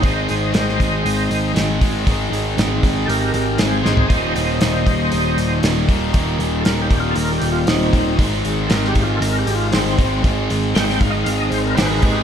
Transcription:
0.02 G#1 G#2 D#3 G#3 C4 D#4 G#4 C5, kick, open hi-hat
0.06 D#5
0.27 G#1 G#3 C4 D#4 G#4 C5 D#5, open hi-hat
0.52 G#1 G#3 C4 D#4 G#4 C5 D#5, snare, open hi-hat
0.69 snare
0.78 G#1 G#3 C4 D#4 G#4, kick, open hi-hat
1.05 G#1, open hi-hat
1.30 G#1, open hi-hat
1.54 G#1 G#2 D#3 G#3 C4 D#4 G#4, snare, open hi-hat
1.81 G#1 G#2 D#3 G#3 C4 D#4 G#4, kick, open hi-hat
2.05 G#1 G#2 D#3 G#3 C4 D#4 G#4, kick, open hi-hat
2.31 G#1 G#3 C4 D#4 G#4, open hi-hat
2.57 G#1 G#3 C4 D#4 G#4, snare, open hi-hat
2.83 G#1 G#3 C4 D#4 G#4, kick, open hi-hat
3.06 G#1 G4 A4 A#4, open hi-hat
3.34 G#1 G4 A#4, open hi-hat
3.58 G#1 G#2 D#3 G#3 C4 D#4 G#4 C5, snare, open hi-hat
3.83 G#1 G#2 D#3 G#3 C4 D#4 G#4 C5, snare
3.97 floor tom
4.08 D#1 D#2 A#2 D#3 G3 A#3 D#4 C5 D#5, kick, open hi-hat
4.35 D#1 D#3 G3 A#3 D#4 C5 D#5, open hi-hat
4.61 D#1 D#3 G3 A#3 D#4 C5 D#5, snare, open hi-hat
4.85 D#1 D#3 G3 A#3 D#4, kick, open hi-hat
5.12 D#1, open hi-hat
5.37 D#1, open hi-hat
5.63 D#1 D#2 A#2 D#3 G3 A#3 D#4, snare, open hi-hat
5.88 D#1 D#2 A#2 D#3 G3 A#3 D#4, kick, open hi-hat
6.13 D#1 D#2 A#2 D#3 G3 A#3 D#4, kick, open hi-hat
6.38 D#1 D#3 G3 A#3 D#4, open hi-hat
6.60 A4
6.65 D#1 D#3 G3 A#3 D#4 A#4, snare, open hi-hat
6.82 G4
6.91 D#1 D#3 G3 A#3 D#4, kick, open hi-hat
7.00 F4
7.11 A4
7.16 D#1 A#4, open hi-hat
7.32 G4
7.41 D#1, open hi-hat
7.52 F4
7.66 D#1 D#2 A#2 D#3 G3 A#3 C4 D#4, snare, open hi-hat
7.93 D#1 D#2 A#2 D#3 G3 A#3 D#4, kick, open hi-hat
8.18 G#1 G#2 D#3 G#3 C4 D#4 G#4, kick, open hi-hat
8.44 G#1 G#3 C4 D#4 G#4, open hi-hat
8.67 G#1 G#3 C4 A4, snare, open hi-hat
8.71 D#4 G#4 A#4
8.85 G4, snare
8.95 G#1 G#3 C4 D#4 G#4, kick, open hi-hat
9.02 F4
9.17 G#1 A4
9.22 A#4, open hi-hat
9.39 G4
9.47 G#1, open hi-hat
9.55 F4
9.72 G#1 G#2 D#3 G#3 C4 D#4 G#4, snare, open hi-hat
9.98 G#1 G#2 D#3 G#3 C4 D#4 G#4, kick, open hi-hat
10.23 G#1 G#2 D#3 G#3 C4 D#4 G#4, kick, open hi-hat
10.48 G#1 G#3 C4 D#4 G#4, open hi-hat
10.74 G#1 G#3 C4 D#4 G#4 G5, snare, open hi-hat
10.90 snare
11.00 G#1 G#3 C4 D#4 G#4 F5, kick, open hi-hat
11.10 D#5
11.24 G#1 F5, open hi-hat
11.38 D#5
11.50 G#1 C5, open hi-hat
11.65 A#4
11.74 G#1 G#2 D#3 B4 C5, open hi-hat
11.78 G#3 C4 D#4 G#4, snare
11.90 A#4
12.02 G#1 D#3 G#3 C4 D#4 G4 G#4, kick, open hi-hat
12.06 G#2

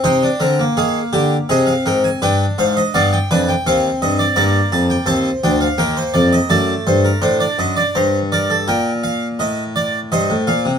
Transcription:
0.04 C3 D#4 C5 G5
0.23 D4
0.40 D3 C4 A#4
0.59 A#3
0.77 D#3 G#4 F5
1.13 D3 G4
1.49 C3 C4 G#4 D#5
1.67 F5
1.86 G#2 A#4 G5
2.04 G#5
2.22 G2 D4 B4 G5
2.58 G#2 C5 F5
2.77 D#5
2.94 G2 B3 D5 F5
3.13 G5
3.31 F2 D4 B4 G#5
3.48 G5
3.66 D#2 C4 C5 F5
4.02 G2 D#5
4.19 D5
4.36 G2 A#3 D5 A#5
4.72 F2 A5
4.90 G5
5.06 D#2 C4 C5 A5
5.44 D2 D4 G5
5.61 F5
5.78 D#2 A#3 A#4 G5
5.97 C5
6.14 F2 D5
6.33 D#5
6.50 F#2 A3 D5 A5
6.87 G2 C5
7.05 A#4
7.22 A2 D4 C5
7.40 D5
7.59 F#2 D#5
7.77 D5
7.95 G2 C5 A#5
8.32 A#4 D5
8.50 A4
8.68 A#2 A#4 G5
9.04 F5
9.39 A2 D#5
9.76 D5
10.12 G2 C5 D#5
10.30 A2
10.47 A#2 F5
10.65 C3

